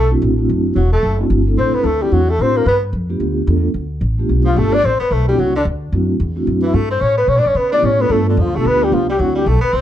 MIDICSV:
0, 0, Header, 1, 6, 480
1, 0, Start_track
1, 0, Tempo, 272109
1, 850, Time_signature, 4, 2, 24, 8
1, 17308, End_track
2, 0, Start_track
2, 0, Title_t, "Flugelhorn"
2, 0, Program_c, 0, 56
2, 0, Note_on_c, 0, 69, 89
2, 199, Note_off_c, 0, 69, 0
2, 1358, Note_on_c, 0, 66, 55
2, 1615, Note_off_c, 0, 66, 0
2, 1630, Note_on_c, 0, 69, 84
2, 2072, Note_off_c, 0, 69, 0
2, 2807, Note_on_c, 0, 72, 84
2, 3071, Note_on_c, 0, 71, 82
2, 3098, Note_off_c, 0, 72, 0
2, 3253, Note_on_c, 0, 69, 78
2, 3279, Note_off_c, 0, 71, 0
2, 3559, Note_on_c, 0, 67, 71
2, 3586, Note_off_c, 0, 69, 0
2, 3747, Note_on_c, 0, 66, 76
2, 3773, Note_off_c, 0, 67, 0
2, 4064, Note_on_c, 0, 69, 90
2, 4090, Note_off_c, 0, 66, 0
2, 4270, Note_on_c, 0, 72, 88
2, 4296, Note_off_c, 0, 69, 0
2, 4541, Note_on_c, 0, 70, 75
2, 4567, Note_off_c, 0, 72, 0
2, 4691, Note_off_c, 0, 70, 0
2, 4701, Note_on_c, 0, 71, 82
2, 4872, Note_off_c, 0, 71, 0
2, 7879, Note_on_c, 0, 65, 86
2, 8093, Note_on_c, 0, 69, 78
2, 8120, Note_off_c, 0, 65, 0
2, 8366, Note_on_c, 0, 74, 107
2, 8392, Note_off_c, 0, 69, 0
2, 8563, Note_on_c, 0, 72, 93
2, 8590, Note_off_c, 0, 74, 0
2, 8833, Note_off_c, 0, 72, 0
2, 8843, Note_on_c, 0, 71, 92
2, 9053, Note_on_c, 0, 69, 81
2, 9079, Note_off_c, 0, 71, 0
2, 9303, Note_off_c, 0, 69, 0
2, 9314, Note_on_c, 0, 67, 79
2, 9526, Note_on_c, 0, 66, 69
2, 9553, Note_off_c, 0, 67, 0
2, 9800, Note_off_c, 0, 66, 0
2, 9818, Note_on_c, 0, 62, 85
2, 9921, Note_off_c, 0, 62, 0
2, 11746, Note_on_c, 0, 64, 77
2, 11909, Note_on_c, 0, 69, 82
2, 11936, Note_off_c, 0, 64, 0
2, 12185, Note_off_c, 0, 69, 0
2, 12196, Note_on_c, 0, 72, 84
2, 12398, Note_on_c, 0, 73, 87
2, 12424, Note_off_c, 0, 72, 0
2, 12657, Note_off_c, 0, 73, 0
2, 12667, Note_on_c, 0, 71, 87
2, 12866, Note_on_c, 0, 73, 78
2, 12893, Note_off_c, 0, 71, 0
2, 13037, Note_on_c, 0, 74, 89
2, 13064, Note_off_c, 0, 73, 0
2, 13203, Note_on_c, 0, 73, 74
2, 13229, Note_off_c, 0, 74, 0
2, 13369, Note_on_c, 0, 71, 74
2, 13396, Note_off_c, 0, 73, 0
2, 13631, Note_off_c, 0, 71, 0
2, 13642, Note_on_c, 0, 74, 96
2, 13857, Note_on_c, 0, 73, 81
2, 13884, Note_off_c, 0, 74, 0
2, 14126, Note_on_c, 0, 71, 93
2, 14152, Note_off_c, 0, 73, 0
2, 14312, Note_on_c, 0, 69, 80
2, 14338, Note_off_c, 0, 71, 0
2, 14593, Note_off_c, 0, 69, 0
2, 14624, Note_on_c, 0, 62, 62
2, 14844, Note_on_c, 0, 65, 74
2, 14871, Note_off_c, 0, 62, 0
2, 15117, Note_on_c, 0, 69, 88
2, 15143, Note_off_c, 0, 65, 0
2, 15303, Note_on_c, 0, 71, 96
2, 15330, Note_off_c, 0, 69, 0
2, 15596, Note_on_c, 0, 67, 80
2, 15622, Note_off_c, 0, 71, 0
2, 15769, Note_on_c, 0, 65, 73
2, 15795, Note_off_c, 0, 67, 0
2, 16037, Note_off_c, 0, 65, 0
2, 16048, Note_on_c, 0, 67, 98
2, 16243, Note_on_c, 0, 66, 80
2, 16269, Note_off_c, 0, 67, 0
2, 16518, Note_off_c, 0, 66, 0
2, 16527, Note_on_c, 0, 67, 89
2, 16730, Note_on_c, 0, 69, 75
2, 16756, Note_off_c, 0, 67, 0
2, 16981, Note_off_c, 0, 69, 0
2, 16992, Note_on_c, 0, 71, 90
2, 17216, Note_on_c, 0, 72, 91
2, 17243, Note_off_c, 0, 71, 0
2, 17308, Note_off_c, 0, 72, 0
2, 17308, End_track
3, 0, Start_track
3, 0, Title_t, "Vibraphone"
3, 0, Program_c, 1, 11
3, 190, Note_on_c, 1, 57, 71
3, 195, Note_on_c, 1, 60, 68
3, 195, Note_on_c, 1, 62, 69
3, 204, Note_on_c, 1, 64, 69
3, 213, Note_on_c, 1, 66, 81
3, 356, Note_off_c, 1, 57, 0
3, 359, Note_off_c, 1, 60, 0
3, 359, Note_off_c, 1, 62, 0
3, 363, Note_off_c, 1, 64, 0
3, 368, Note_off_c, 1, 66, 0
3, 661, Note_on_c, 1, 57, 68
3, 669, Note_on_c, 1, 60, 55
3, 678, Note_on_c, 1, 62, 60
3, 679, Note_on_c, 1, 64, 60
3, 690, Note_on_c, 1, 66, 69
3, 1292, Note_off_c, 1, 57, 0
3, 1296, Note_off_c, 1, 60, 0
3, 1300, Note_off_c, 1, 62, 0
3, 1301, Note_off_c, 1, 64, 0
3, 1307, Note_off_c, 1, 66, 0
3, 2114, Note_on_c, 1, 57, 66
3, 2116, Note_on_c, 1, 60, 61
3, 2123, Note_on_c, 1, 62, 61
3, 2126, Note_on_c, 1, 64, 60
3, 2138, Note_on_c, 1, 66, 72
3, 2277, Note_off_c, 1, 57, 0
3, 2278, Note_off_c, 1, 60, 0
3, 2282, Note_off_c, 1, 62, 0
3, 2284, Note_off_c, 1, 64, 0
3, 2289, Note_off_c, 1, 66, 0
3, 2582, Note_on_c, 1, 57, 59
3, 2590, Note_on_c, 1, 60, 52
3, 2593, Note_on_c, 1, 62, 53
3, 2604, Note_on_c, 1, 64, 53
3, 2605, Note_on_c, 1, 69, 64
3, 3212, Note_off_c, 1, 57, 0
3, 3216, Note_off_c, 1, 60, 0
3, 3218, Note_off_c, 1, 62, 0
3, 3223, Note_off_c, 1, 64, 0
3, 3224, Note_off_c, 1, 69, 0
3, 3540, Note_on_c, 1, 57, 63
3, 3546, Note_on_c, 1, 60, 58
3, 3551, Note_on_c, 1, 62, 57
3, 3561, Note_on_c, 1, 64, 59
3, 3570, Note_on_c, 1, 66, 68
3, 3710, Note_off_c, 1, 57, 0
3, 3713, Note_off_c, 1, 60, 0
3, 3716, Note_off_c, 1, 62, 0
3, 3720, Note_off_c, 1, 64, 0
3, 3725, Note_off_c, 1, 66, 0
3, 4203, Note_on_c, 1, 57, 59
3, 4220, Note_on_c, 1, 60, 59
3, 4222, Note_on_c, 1, 64, 57
3, 4225, Note_on_c, 1, 62, 54
3, 4230, Note_on_c, 1, 66, 63
3, 4468, Note_off_c, 1, 57, 0
3, 4476, Note_off_c, 1, 60, 0
3, 4477, Note_off_c, 1, 64, 0
3, 4479, Note_off_c, 1, 62, 0
3, 4481, Note_off_c, 1, 66, 0
3, 5449, Note_on_c, 1, 57, 61
3, 5459, Note_on_c, 1, 59, 60
3, 5461, Note_on_c, 1, 62, 59
3, 5463, Note_on_c, 1, 65, 61
3, 5471, Note_on_c, 1, 67, 72
3, 6086, Note_off_c, 1, 57, 0
3, 6091, Note_off_c, 1, 59, 0
3, 6092, Note_off_c, 1, 62, 0
3, 6093, Note_off_c, 1, 65, 0
3, 6097, Note_off_c, 1, 67, 0
3, 6125, Note_on_c, 1, 59, 58
3, 6126, Note_on_c, 1, 57, 65
3, 6136, Note_on_c, 1, 62, 59
3, 6137, Note_on_c, 1, 65, 58
3, 6146, Note_on_c, 1, 69, 65
3, 6389, Note_off_c, 1, 59, 0
3, 6390, Note_off_c, 1, 57, 0
3, 6394, Note_off_c, 1, 62, 0
3, 6395, Note_off_c, 1, 65, 0
3, 6399, Note_off_c, 1, 69, 0
3, 7376, Note_on_c, 1, 57, 71
3, 7380, Note_on_c, 1, 59, 58
3, 7382, Note_on_c, 1, 62, 57
3, 7393, Note_on_c, 1, 65, 63
3, 7399, Note_on_c, 1, 67, 75
3, 8010, Note_off_c, 1, 57, 0
3, 8012, Note_off_c, 1, 59, 0
3, 8013, Note_off_c, 1, 62, 0
3, 8019, Note_off_c, 1, 65, 0
3, 8021, Note_off_c, 1, 67, 0
3, 8061, Note_on_c, 1, 57, 60
3, 8061, Note_on_c, 1, 59, 55
3, 8071, Note_on_c, 1, 62, 53
3, 8079, Note_on_c, 1, 65, 54
3, 8087, Note_on_c, 1, 67, 66
3, 8318, Note_off_c, 1, 57, 0
3, 8318, Note_off_c, 1, 59, 0
3, 8323, Note_off_c, 1, 62, 0
3, 8327, Note_off_c, 1, 65, 0
3, 8330, Note_off_c, 1, 67, 0
3, 9300, Note_on_c, 1, 57, 60
3, 9303, Note_on_c, 1, 60, 55
3, 9310, Note_on_c, 1, 62, 57
3, 9314, Note_on_c, 1, 64, 54
3, 9320, Note_on_c, 1, 66, 67
3, 9471, Note_off_c, 1, 57, 0
3, 9473, Note_off_c, 1, 60, 0
3, 9477, Note_off_c, 1, 62, 0
3, 9478, Note_off_c, 1, 64, 0
3, 9481, Note_off_c, 1, 66, 0
3, 10457, Note_on_c, 1, 57, 60
3, 10457, Note_on_c, 1, 60, 55
3, 10463, Note_on_c, 1, 62, 54
3, 10476, Note_on_c, 1, 64, 55
3, 10479, Note_on_c, 1, 66, 70
3, 10716, Note_off_c, 1, 57, 0
3, 10716, Note_off_c, 1, 60, 0
3, 10719, Note_off_c, 1, 62, 0
3, 10726, Note_off_c, 1, 64, 0
3, 10727, Note_off_c, 1, 66, 0
3, 11214, Note_on_c, 1, 57, 64
3, 11219, Note_on_c, 1, 62, 59
3, 11220, Note_on_c, 1, 60, 59
3, 11225, Note_on_c, 1, 64, 60
3, 11234, Note_on_c, 1, 66, 72
3, 11850, Note_off_c, 1, 57, 0
3, 11853, Note_off_c, 1, 60, 0
3, 11853, Note_off_c, 1, 62, 0
3, 11856, Note_off_c, 1, 64, 0
3, 11860, Note_off_c, 1, 66, 0
3, 13621, Note_on_c, 1, 57, 70
3, 13623, Note_on_c, 1, 59, 61
3, 13631, Note_on_c, 1, 61, 60
3, 13633, Note_on_c, 1, 64, 58
3, 13639, Note_on_c, 1, 67, 73
3, 13793, Note_off_c, 1, 57, 0
3, 13794, Note_off_c, 1, 59, 0
3, 13798, Note_off_c, 1, 61, 0
3, 13799, Note_off_c, 1, 64, 0
3, 13802, Note_off_c, 1, 67, 0
3, 14102, Note_on_c, 1, 57, 70
3, 14110, Note_on_c, 1, 59, 68
3, 14116, Note_on_c, 1, 62, 70
3, 14118, Note_on_c, 1, 65, 66
3, 14118, Note_on_c, 1, 69, 82
3, 14734, Note_off_c, 1, 57, 0
3, 14738, Note_off_c, 1, 59, 0
3, 14741, Note_off_c, 1, 62, 0
3, 14742, Note_off_c, 1, 65, 0
3, 14742, Note_off_c, 1, 69, 0
3, 15071, Note_on_c, 1, 57, 62
3, 15075, Note_on_c, 1, 59, 57
3, 15084, Note_on_c, 1, 62, 55
3, 15090, Note_on_c, 1, 65, 59
3, 15098, Note_on_c, 1, 67, 68
3, 15518, Note_off_c, 1, 57, 0
3, 15520, Note_off_c, 1, 59, 0
3, 15524, Note_off_c, 1, 62, 0
3, 15527, Note_off_c, 1, 65, 0
3, 15531, Note_off_c, 1, 67, 0
3, 15546, Note_on_c, 1, 57, 77
3, 15554, Note_on_c, 1, 59, 69
3, 15559, Note_on_c, 1, 62, 66
3, 15568, Note_on_c, 1, 65, 70
3, 15575, Note_on_c, 1, 67, 88
3, 15714, Note_off_c, 1, 57, 0
3, 15718, Note_off_c, 1, 59, 0
3, 15721, Note_off_c, 1, 62, 0
3, 15726, Note_off_c, 1, 65, 0
3, 15729, Note_off_c, 1, 67, 0
3, 16208, Note_on_c, 1, 57, 58
3, 16217, Note_on_c, 1, 60, 54
3, 16220, Note_on_c, 1, 62, 56
3, 16221, Note_on_c, 1, 64, 54
3, 16229, Note_on_c, 1, 66, 64
3, 16471, Note_off_c, 1, 57, 0
3, 16475, Note_off_c, 1, 60, 0
3, 16477, Note_off_c, 1, 62, 0
3, 16478, Note_off_c, 1, 64, 0
3, 16482, Note_off_c, 1, 66, 0
3, 17308, End_track
4, 0, Start_track
4, 0, Title_t, "Tenor saxophone"
4, 0, Program_c, 2, 66
4, 0, Note_on_c, 2, 57, 79
4, 184, Note_off_c, 2, 57, 0
4, 1332, Note_on_c, 2, 54, 48
4, 1602, Note_off_c, 2, 54, 0
4, 1641, Note_on_c, 2, 57, 75
4, 2078, Note_off_c, 2, 57, 0
4, 2786, Note_on_c, 2, 60, 67
4, 3093, Note_on_c, 2, 59, 64
4, 3120, Note_off_c, 2, 60, 0
4, 3289, Note_on_c, 2, 57, 67
4, 3315, Note_off_c, 2, 59, 0
4, 3573, Note_on_c, 2, 55, 63
4, 3600, Note_off_c, 2, 57, 0
4, 3765, Note_on_c, 2, 54, 65
4, 3792, Note_off_c, 2, 55, 0
4, 4053, Note_on_c, 2, 57, 76
4, 4080, Note_off_c, 2, 54, 0
4, 4254, Note_on_c, 2, 60, 77
4, 4280, Note_off_c, 2, 57, 0
4, 4530, Note_on_c, 2, 58, 68
4, 4556, Note_off_c, 2, 60, 0
4, 4704, Note_off_c, 2, 58, 0
4, 4731, Note_on_c, 2, 59, 69
4, 4982, Note_off_c, 2, 59, 0
4, 7846, Note_on_c, 2, 53, 72
4, 8071, Note_on_c, 2, 57, 71
4, 8097, Note_off_c, 2, 53, 0
4, 8346, Note_on_c, 2, 62, 94
4, 8373, Note_off_c, 2, 57, 0
4, 8540, Note_on_c, 2, 60, 77
4, 8566, Note_off_c, 2, 62, 0
4, 8805, Note_off_c, 2, 60, 0
4, 8816, Note_on_c, 2, 59, 76
4, 9020, Note_on_c, 2, 57, 69
4, 9047, Note_off_c, 2, 59, 0
4, 9307, Note_off_c, 2, 57, 0
4, 9326, Note_on_c, 2, 55, 70
4, 9519, Note_on_c, 2, 54, 61
4, 9545, Note_off_c, 2, 55, 0
4, 9796, Note_off_c, 2, 54, 0
4, 9806, Note_on_c, 2, 50, 65
4, 9971, Note_off_c, 2, 50, 0
4, 11688, Note_on_c, 2, 52, 65
4, 11898, Note_on_c, 2, 57, 71
4, 11924, Note_off_c, 2, 52, 0
4, 12171, Note_off_c, 2, 57, 0
4, 12181, Note_on_c, 2, 60, 75
4, 12364, Note_on_c, 2, 61, 72
4, 12390, Note_off_c, 2, 60, 0
4, 12642, Note_off_c, 2, 61, 0
4, 12653, Note_on_c, 2, 59, 69
4, 12858, Note_on_c, 2, 61, 71
4, 12884, Note_off_c, 2, 59, 0
4, 13010, Note_on_c, 2, 62, 75
4, 13037, Note_off_c, 2, 61, 0
4, 13160, Note_on_c, 2, 61, 65
4, 13187, Note_off_c, 2, 62, 0
4, 13346, Note_on_c, 2, 59, 65
4, 13372, Note_off_c, 2, 61, 0
4, 13606, Note_off_c, 2, 59, 0
4, 13616, Note_on_c, 2, 62, 82
4, 13842, Note_on_c, 2, 61, 68
4, 13869, Note_off_c, 2, 62, 0
4, 14134, Note_on_c, 2, 59, 78
4, 14160, Note_off_c, 2, 61, 0
4, 14325, Note_on_c, 2, 57, 69
4, 14351, Note_off_c, 2, 59, 0
4, 14599, Note_off_c, 2, 57, 0
4, 14627, Note_on_c, 2, 50, 51
4, 14802, Note_on_c, 2, 53, 64
4, 14829, Note_off_c, 2, 50, 0
4, 15098, Note_on_c, 2, 57, 72
4, 15124, Note_off_c, 2, 53, 0
4, 15278, Note_on_c, 2, 59, 79
4, 15305, Note_off_c, 2, 57, 0
4, 15571, Note_on_c, 2, 55, 70
4, 15597, Note_off_c, 2, 59, 0
4, 15774, Note_on_c, 2, 53, 65
4, 15800, Note_off_c, 2, 55, 0
4, 16033, Note_off_c, 2, 53, 0
4, 16044, Note_on_c, 2, 55, 76
4, 16207, Note_on_c, 2, 54, 65
4, 16234, Note_off_c, 2, 55, 0
4, 16483, Note_off_c, 2, 54, 0
4, 16494, Note_on_c, 2, 55, 66
4, 16702, Note_on_c, 2, 57, 63
4, 16728, Note_off_c, 2, 55, 0
4, 16944, Note_off_c, 2, 57, 0
4, 16955, Note_on_c, 2, 59, 80
4, 17165, Note_on_c, 2, 60, 81
4, 17191, Note_off_c, 2, 59, 0
4, 17308, Note_off_c, 2, 60, 0
4, 17308, End_track
5, 0, Start_track
5, 0, Title_t, "Upright bass"
5, 0, Program_c, 3, 32
5, 0, Note_on_c, 3, 35, 74
5, 361, Note_off_c, 3, 35, 0
5, 383, Note_on_c, 3, 33, 86
5, 842, Note_off_c, 3, 33, 0
5, 870, Note_on_c, 3, 30, 78
5, 1326, Note_off_c, 3, 30, 0
5, 1339, Note_on_c, 3, 28, 83
5, 1800, Note_off_c, 3, 28, 0
5, 1813, Note_on_c, 3, 30, 74
5, 2277, Note_off_c, 3, 30, 0
5, 2293, Note_on_c, 3, 31, 84
5, 2757, Note_off_c, 3, 31, 0
5, 2779, Note_on_c, 3, 33, 75
5, 3045, Note_off_c, 3, 33, 0
5, 3241, Note_on_c, 3, 38, 81
5, 3710, Note_off_c, 3, 38, 0
5, 3733, Note_on_c, 3, 40, 77
5, 4197, Note_off_c, 3, 40, 0
5, 4217, Note_on_c, 3, 45, 82
5, 4679, Note_off_c, 3, 45, 0
5, 4690, Note_on_c, 3, 43, 78
5, 5151, Note_off_c, 3, 43, 0
5, 5161, Note_on_c, 3, 41, 87
5, 5631, Note_off_c, 3, 41, 0
5, 5642, Note_on_c, 3, 38, 75
5, 6111, Note_off_c, 3, 38, 0
5, 6125, Note_on_c, 3, 40, 90
5, 6588, Note_off_c, 3, 40, 0
5, 6598, Note_on_c, 3, 38, 79
5, 7062, Note_off_c, 3, 38, 0
5, 7073, Note_on_c, 3, 33, 80
5, 7547, Note_off_c, 3, 33, 0
5, 7570, Note_on_c, 3, 35, 72
5, 8036, Note_off_c, 3, 35, 0
5, 8050, Note_on_c, 3, 31, 82
5, 8516, Note_off_c, 3, 31, 0
5, 8532, Note_on_c, 3, 33, 83
5, 8802, Note_off_c, 3, 33, 0
5, 9009, Note_on_c, 3, 35, 81
5, 9476, Note_off_c, 3, 35, 0
5, 9498, Note_on_c, 3, 36, 78
5, 9961, Note_off_c, 3, 36, 0
5, 9970, Note_on_c, 3, 38, 89
5, 10437, Note_off_c, 3, 38, 0
5, 10450, Note_on_c, 3, 42, 83
5, 10917, Note_off_c, 3, 42, 0
5, 10932, Note_on_c, 3, 40, 86
5, 11398, Note_off_c, 3, 40, 0
5, 11412, Note_on_c, 3, 42, 78
5, 11874, Note_off_c, 3, 42, 0
5, 11885, Note_on_c, 3, 43, 84
5, 12354, Note_off_c, 3, 43, 0
5, 12366, Note_on_c, 3, 45, 79
5, 12823, Note_off_c, 3, 45, 0
5, 12833, Note_on_c, 3, 47, 78
5, 13002, Note_off_c, 3, 47, 0
5, 13002, Note_on_c, 3, 45, 53
5, 13145, Note_off_c, 3, 45, 0
5, 13156, Note_on_c, 3, 43, 63
5, 13301, Note_off_c, 3, 43, 0
5, 13312, Note_on_c, 3, 49, 74
5, 13788, Note_off_c, 3, 49, 0
5, 13805, Note_on_c, 3, 45, 83
5, 14268, Note_off_c, 3, 45, 0
5, 14278, Note_on_c, 3, 43, 84
5, 14751, Note_off_c, 3, 43, 0
5, 14765, Note_on_c, 3, 40, 86
5, 14932, Note_off_c, 3, 40, 0
5, 14932, Note_on_c, 3, 38, 51
5, 15092, Note_off_c, 3, 38, 0
5, 15099, Note_on_c, 3, 35, 66
5, 15245, Note_off_c, 3, 35, 0
5, 15254, Note_on_c, 3, 38, 82
5, 15718, Note_off_c, 3, 38, 0
5, 15732, Note_on_c, 3, 36, 87
5, 16197, Note_off_c, 3, 36, 0
5, 16212, Note_on_c, 3, 38, 83
5, 16676, Note_off_c, 3, 38, 0
5, 16692, Note_on_c, 3, 35, 89
5, 16962, Note_off_c, 3, 35, 0
5, 17164, Note_on_c, 3, 36, 79
5, 17308, Note_off_c, 3, 36, 0
5, 17308, End_track
6, 0, Start_track
6, 0, Title_t, "Muted upright bass strokes"
6, 3058, Note_on_c, 9, 29, 36
6, 3234, Note_off_c, 9, 29, 0
6, 8831, Note_on_c, 9, 29, 37
6, 9007, Note_off_c, 9, 29, 0
6, 17308, End_track
0, 0, End_of_file